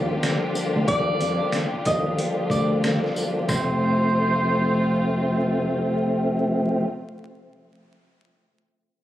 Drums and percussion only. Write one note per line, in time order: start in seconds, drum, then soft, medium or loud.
0.23 snare loud
0.23 closed hi-hat medium
0.55 tambourine medium
0.55 shaker medium
0.88 kick loud
0.88 closed hi-hat loud
1.21 closed hi-hat medium
1.21 tambourine medium
1.21 shaker medium
1.52 snare loud
1.52 closed hi-hat medium
1.85 kick loud
1.85 closed hi-hat medium
1.85 tambourine medium
1.85 shaker medium
2.18 closed hi-hat medium
2.50 kick medium
2.50 tambourine soft
2.50 shaker medium
2.84 snare loud
2.84 closed hi-hat medium
3.04 snare soft
3.16 tambourine medium
3.16 shaker soft
3.49 kick loud
3.49 snare medium
3.49 tambourine medium